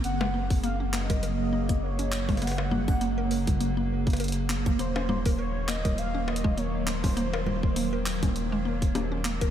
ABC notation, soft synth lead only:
X:1
M:4/4
L:1/8
Q:"Swing 16ths" 1/4=101
K:Gblyd
V:1 name="Soft synth lead"
g2 f e3 d2 | g4 z4 | c2 d e f e d c- | c4- c z3 |]